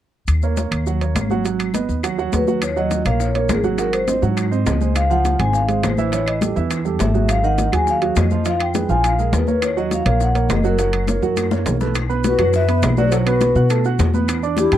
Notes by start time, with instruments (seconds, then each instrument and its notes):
0.28 upright bass D#2, high conga, high timbale, claves, maracas
0.42 grand piano A#3 A#4 C#5, high conga, maracas
0.57 grand piano A#3 A#4 C#5, high conga, high timbale, low timbale, maracas
0.71 upright bass D#2, high conga, high timbale, claves, maracas
0.86 grand piano F#3 F#4 F#5, high conga, maracas
1.01 grand piano A#3 A#4 C#5, high conga, high timbale, maracas
1.15 upright bass G#1, high conga, high timbale, low timbale, claves, maracas
1.30 grand piano F#3 F#4 F#5, high conga, maracas
1.45 grand piano F#3 F#4 F#5, high conga, high timbale, maracas
1.59 high conga, high timbale, claves, maracas
1.74 grand piano B3 B4 D#5, high conga, high timbale, low timbale, maracas
1.89 upright bass D#2, maracas
2.03 grand piano F#3 F#4 F#5, high conga, high timbale, claves, maracas
2.18 grand piano F#3 F#4 F#5, high conga, maracas
2.32 upright bass D#2, vibraphone B4, high conga, high timbale, low timbale, maracas
2.47 grand piano F#3 F#4 F#5, high conga, maracas
2.62 vibraphone C#5, high bongo, high conga, high timbale, claves, maracas
2.76 grand piano F#3 F#4 F#5, vibraphone D#5, high conga, maracas
2.91 high bongo, high conga, high timbale, low timbale, maracas
3.05 upright bass A#1, grand piano A#3 A#4 C#5, vibraphone F5, high conga, high timbale, claves, maracas
3.20 vibraphone C#5, high bongo, high conga, maracas
3.35 grand piano A#3 A#4 C#5, high conga, high timbale, maracas
3.49 upright bass G#1, vibraphone G#4, high bongo, low bongo, high conga, high timbale, low timbale, claves, maracas
3.64 grand piano F#3 F#4 F#5, high conga, maracas
3.78 grand piano F#3 F#4 F#5, vibraphone A#4, high bongo, high conga, high timbale, maracas
3.93 vibraphone C5, high bongo, high conga, high timbale, claves, maracas
4.07 grand piano C4 C5 D#5, high bongo, high conga, high timbale, low timbale, maracas
4.22 upright bass G#2, grand piano F#3 F#4 F#5, high bongo, maracas
4.37 high bongo, high conga, high timbale, claves, maracas
4.51 grand piano C4 C5 D#5, high bongo, high conga, maracas
4.66 upright bass C#2, vibraphone D#5, high bongo, low bongo, high conga, high timbale, low timbale, maracas
4.81 grand piano G#3 G#4 C5, high conga, maracas
4.95 vibraphone F5, high bongo, high timbale, claves, maracas
5.10 grand piano F3 F4 F5, vibraphone F#5, high conga, maracas
5.25 high bongo, high conga, high timbale, low timbale, maracas
5.39 upright bass G#1, grand piano G#3 G#4 C5, vibraphone G#5, high timbale, claves, maracas
5.53 vibraphone F5, high bongo, high conga, maracas
5.68 grand piano G#3 G#4 C5, high conga, high timbale, maracas
5.83 upright bass A1, vibraphone C5, high bongo, low bongo, high conga, high timbale, low timbale, claves, maracas
5.97 grand piano E3 E4 E5, high conga, maracas
6.12 grand piano E3 E4 E5, vibraphone C#5, high bongo, high timbale, maracas
6.26 vibraphone D#5, high bongo, high conga, high timbale, claves, maracas
6.41 grand piano G3 G4 A4, high bongo, high conga, high timbale, low timbale, maracas
6.56 upright bass E2, grand piano E3 E4 E5, high bongo, maracas
6.70 high bongo, high conga, high timbale, claves, maracas
6.85 grand piano G3 G4 A4, high bongo, high conga, maracas
6.99 upright bass G#1, vibraphone E5, high bongo, low bongo, high conga, high timbale, low timbale, maracas
7.14 grand piano F#3 F#4 G#4, high conga, maracas
7.29 vibraphone F5, high bongo, high conga, high timbale, claves, maracas
7.43 grand piano D#3 D#4 D#5, vibraphone F#5, high conga, maracas
7.58 high bongo, high conga, high timbale, low timbale, maracas
7.72 upright bass D#2, grand piano F#3 F#4 G#4, vibraphone G#5, high timbale, claves, maracas
7.87 vibraphone F5, high bongo, high conga, maracas
8.02 grand piano F#3 F#4 G#4, high conga, high timbale, maracas
8.16 upright bass F2, vibraphone D#5, high bongo, low bongo, high conga, high timbale, low timbale, claves, maracas
8.31 grand piano F3 F4 F5, high conga, maracas
8.45 grand piano F3 F4 F5, vibraphone F5, high bongo, high timbale, maracas
8.60 vibraphone G5, high bongo, high conga, high timbale, claves, maracas
8.74 grand piano G#3 G#4 B4, high bongo, high conga, high timbale, low timbale, maracas
8.89 upright bass A#1, grand piano F3 F4 F5, vibraphone G#5, high bongo, maracas
9.04 vibraphone F5, high bongo, high conga, high timbale, claves, maracas
9.18 grand piano G#3 G#4 A#4, high bongo, high conga, maracas
9.32 upright bass D#2, vibraphone B4, high bongo, low bongo, high conga, high timbale, low timbale, maracas
9.47 grand piano A#3 A#4 C#5, high conga, maracas
9.62 vibraphone C#5, high bongo, high timbale, claves, maracas
9.76 grand piano F#3 F#4 F#5, vibraphone D#5, high conga, maracas
9.91 vibraphone F5, high bongo, high conga, high timbale, low timbale, maracas
10.06 upright bass A#1, grand piano A#3 A#4 C#5, high conga, high timbale, claves, maracas
10.20 vibraphone F#5, high bongo, high conga, maracas
10.35 grand piano A#3 A#4 C#5, high conga, high timbale, maracas
10.49 upright bass F#1, vibraphone D#5, high bongo, low bongo, high conga, high timbale, low timbale, claves, maracas
10.63 grand piano F#3 F#4 F#5, vibraphone A#4, high conga, maracas
10.79 grand piano F#3 F#4 F#5, high bongo, high timbale, maracas
10.93 high bongo, high conga, high timbale, claves, maracas
11.07 grand piano A#3 A#4 C#5, high bongo, high conga, high timbale, low timbale, maracas
11.22 upright bass F#2, grand piano F#3 F#4 F#5, high bongo, maracas
11.36 high bongo, high conga, high timbale, claves, maracas
11.51 grand piano A#3 A#4 C#5, high bongo, high conga, maracas
11.66 upright bass B1, low bongo, low conga, high timbale, low timbale, maracas
11.81 grand piano A3 A4 B4, low bongo, low conga, maracas
11.95 high bongo, high conga, high timbale, claves, maracas
12.10 grand piano B3 B4 B5, high conga, maracas
12.24 flute F#4, vibraphone B4, high bongo, high conga, high timbale, low timbale, maracas
12.39 upright bass F#2, grand piano F#3 F#4 F#5, high conga, low conga, high timbale, claves, maracas
12.53 flute B4, vibraphone E5, high bongo, high conga, maracas
12.68 grand piano B3 B4 B5, high conga, high timbale, maracas
12.82 upright bass B1, high bongo, low bongo, high conga, high timbale, low timbale, claves, maracas
12.97 grand piano F#3 F#4 F#5, flute B4, vibraphone D5, high conga, maracas
13.07 flute G4 A4, vibraphone C5
13.12 grand piano F#3 F#4 F#5, vibraphone C#5, high bongo, high timbale, maracas
13.26 grand piano B3 B4 B5, flute F#4, vibraphone B4, high conga, high timbale, claves, maracas
13.41 high bongo, high conga, high timbale, low timbale, maracas
13.55 upright bass B2, grand piano F#4 F#5 F#6, high bongo, maracas
13.70 grand piano A3 A4 A5, high bongo, high conga, high timbale, claves, maracas
13.85 grand piano F#4 F#5 F#6, high bongo, high conga, maracas
13.99 upright bass E2, high bongo, low bongo, high conga, high timbale, low timbale, maracas
14.13 grand piano B3 B4 B5, high conga, maracas
14.28 high bongo, high conga, high timbale, claves, maracas
14.42 grand piano D4 D5 D6, high conga, maracas
14.57 flute E4, vibraphone G4, high bongo, high conga, high timbale, low timbale, maracas
14.72 upright bass G2, grand piano G3 G4 G5, high conga, low conga, high timbale, claves, maracas